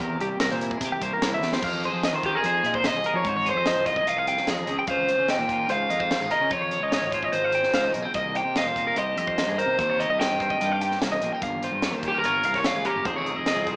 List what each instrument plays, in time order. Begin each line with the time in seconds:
Already playing: clean electric guitar G3 A#3 G4
0.00 fingered electric bass E2, clean electric guitar C3 A#4
0.20 fingered electric bass C2, clean electric guitar G3 G4, closed hi-hat
0.40 fingered electric bass C2, clean electric guitar A#3 A#4, snare, closed hi-hat
0.51 fingered electric bass A#2, clean electric guitar C5, snare
0.61 clean electric guitar E4, closed hi-hat
0.71 clean electric guitar G#4, kick
0.80 fingered electric bass C3, kick, closed hi-hat
0.85 clean electric guitar G4
0.92 clean electric guitar G4
1.00 fingered electric bass C2, clean electric guitar A#3 C5, kick, closed hi-hat
1.13 clean electric guitar A#4
1.22 fingered electric bass C2, snare, closed hi-hat
1.26 clean electric guitar E4
1.34 clean electric guitar E5
1.42 fingered electric bass E2, clean electric guitar G4, snare
1.53 clean electric guitar C5, snare
1.62 fingered electric bass F2, clean electric guitar F2 C4 F5, kick, crash
1.75 clean electric guitar D#4
1.83 clean electric guitar G#4 C5, closed hi-hat
1.93 fingered electric bass F3
2.03 clean electric guitar F3 D#5, snare, closed hi-hat
2.13 fingered electric bass D#3, clean electric guitar C5
2.23 overdriven electric guitar G4, kick, closed hi-hat
2.28 clean electric guitar D#4
2.35 overdriven electric guitar G#4, clean electric guitar A#4
2.43 fingered electric bass F2, clean electric guitar D#4 C5, closed hi-hat
2.63 fingered electric bass A#2, clean electric guitar C3 D#5, closed hi-hat
2.74 overdriven electric guitar C5, clean electric guitar C5, kick
2.84 clean electric guitar D#4, overdriven electric guitar D#5, snare, closed hi-hat
2.94 fingered electric bass C2, clean electric guitar G#4
3.04 clean electric guitar G#4 A#4, closed hi-hat
3.14 fingered electric bass F3, overdriven electric guitar C#5
3.24 clean electric guitar F2 D#4 C5, fingered electric bass G#2, kick, closed hi-hat
3.37 clean electric guitar C#5
3.46 clean electric guitar G#4, overdriven electric guitar C5, closed hi-hat
3.55 fingered electric bass F2, clean electric guitar D#5
3.66 clean electric guitar F3 D#5, snare, closed hi-hat
3.75 fingered electric bass C2
3.86 clean electric guitar F4 C5, overdriven electric guitar D#5, kick, closed hi-hat
3.96 clean electric guitar G#4 D#5, kick
4.05 fingered electric bass C2, clean electric guitar F4, overdriven electric guitar F5, closed hi-hat
4.17 clean electric guitar G#4 F5
4.27 clean electric guitar C3 G5, closed hi-hat
4.37 snare
4.47 fingered electric bass F2, clean electric guitar D#4 F5, overdriven electric guitar G#4, snare, closed hi-hat
4.59 clean electric guitar D#5
4.67 fingered electric bass C#2, clean electric guitar C#3 C4, closed hi-hat
4.79 clean electric guitar G5
4.87 fingered electric bass C#2, clean electric guitar F4 F5, overdriven electric guitar C5, kick, closed hi-hat
5.08 clean electric guitar F3 C5, closed hi-hat
5.18 fingered electric bass C#3
5.28 clean electric guitar D#4 D#5, overdriven electric guitar G5, snare, closed hi-hat
5.39 fingered electric bass A#2, clean electric guitar C5
5.49 clean electric guitar F4, kick, closed hi-hat
5.59 clean electric guitar A#4
5.69 fingered electric bass C#2, clean electric guitar G#2 C5, overdriven electric guitar F5, closed hi-hat
5.89 fingered electric bass F2, clean electric guitar A#3 D#5, closed hi-hat
6.00 clean electric guitar C4 C5, kick
6.11 clean electric guitar C4, snare, closed hi-hat
6.20 fingered electric bass G#1, clean electric guitar D#4 G#4
6.31 clean electric guitar C#3 C#4 A#4, overdriven electric guitar D#5, closed hi-hat
6.41 fingered electric bass C#3
6.51 fingered electric bass F2, clean electric guitar F4 C5, overdriven electric guitar C#5, kick, closed hi-hat
6.62 clean electric guitar C#5
6.71 clean electric guitar F3, closed hi-hat
6.80 fingered electric bass C#2, clean electric guitar D#5
6.92 clean electric guitar D#4 D#5, snare, closed hi-hat
7.02 fingered electric bass G#1
7.11 clean electric guitar F4 C5, kick, closed hi-hat
7.23 clean electric guitar D#5, kick
7.32 fingered electric bass G#1, clean electric guitar G#2, overdriven electric guitar C5, closed hi-hat
7.45 clean electric guitar F5
7.52 clean electric guitar C#4 G5, closed hi-hat
7.63 snare
7.72 fingered electric bass C#2, clean electric guitar C4 F5, snare, closed hi-hat
7.81 clean electric guitar D#4
7.85 clean electric guitar D#5
7.93 fingered electric bass B1, clean electric guitar C#3 A#3, closed hi-hat
8.03 clean electric guitar C4 G5
8.14 fingered electric bass C2, clean electric guitar C3 A#3 D#5, overdriven electric guitar D#5, kick, closed hi-hat
8.35 clean electric guitar G4 C5, overdriven electric guitar G5, closed hi-hat
8.45 fingered electric bass C3
8.56 clean electric guitar G3 D#5, overdriven electric guitar F5, snare, closed hi-hat
8.65 fingered electric bass A#2, clean electric guitar C5
8.76 clean electric guitar D#4, kick, closed hi-hat
8.87 clean electric guitar A#4
8.96 fingered electric bass C2, clean electric guitar G4 C5, overdriven electric guitar D#5, closed hi-hat
9.16 fingered electric bass F2, clean electric guitar G2 D#5, closed hi-hat
9.27 clean electric guitar C5, kick
9.38 clean electric guitar A#3, snare, closed hi-hat
9.47 fingered electric bass G2, clean electric guitar G#4
9.58 clean electric guitar D#4 A#4, overdriven electric guitar C5, closed hi-hat
9.67 fingered electric bass C3
9.79 fingered electric bass D#2, clean electric guitar C3 A#3 C5, overdriven electric guitar C5, kick, closed hi-hat
9.90 clean electric guitar C#5
10.00 clean electric guitar G4, overdriven electric guitar D#5, closed hi-hat
10.08 fingered electric bass C2, clean electric guitar D#5
10.19 clean electric guitar G3 D#5, overdriven electric guitar G5, snare, closed hi-hat
10.30 fingered electric bass G2
10.40 clean electric guitar D#4 C5, kick, closed hi-hat
10.50 clean electric guitar D#5, kick
10.61 fingered electric bass G2, clean electric guitar F4, closed hi-hat
10.72 clean electric guitar G4 F5
10.81 clean electric guitar G2 G5, closed hi-hat
10.91 snare
11.01 fingered electric bass C2, clean electric guitar A#3 F5, snare, closed hi-hat
11.12 clean electric guitar D#5
11.21 fingered electric bass A#1, clean electric guitar C4, closed hi-hat
11.32 clean electric guitar D#4 G5
11.41 fingered electric bass G1, clean electric guitar G2 A#3 F5, kick, closed hi-hat
11.63 clean electric guitar F4 C5, closed hi-hat
11.71 fingered electric bass G2
11.82 clean electric guitar G3 C#5, snare, closed hi-hat
11.92 fingered electric bass D#2, clean electric guitar C5
12.03 clean electric guitar C#4, kick, closed hi-hat
12.08 overdriven electric guitar G4
12.14 clean electric guitar A#4, overdriven electric guitar A#4
12.24 fingered electric bass G1, clean electric guitar F4 C#5, closed hi-hat
12.44 fingered electric bass C2, clean electric guitar F5, closed hi-hat
12.54 clean electric guitar C#5, overdriven electric guitar C#5, kick, snare
12.64 clean electric guitar A#3, overdriven electric guitar F5, snare, closed hi-hat
12.75 fingered electric bass C#2, clean electric guitar G#4
12.85 clean electric guitar C#4 A#4, overdriven electric guitar G4, closed hi-hat
12.96 fingered electric bass G1
13.04 fingered electric bass F1, clean electric guitar F2 A#3 C5, overdriven electric guitar G#4, kick, closed hi-hat
13.16 clean electric guitar C4 C#5
13.26 clean electric guitar D#4, closed hi-hat
13.36 fingered electric bass F1, clean electric guitar D#5
13.46 clean electric guitar F3 D#5, snare, closed hi-hat
13.56 fingered electric bass C2
13.67 clean electric guitar D#4 C5, kick, closed hi-hat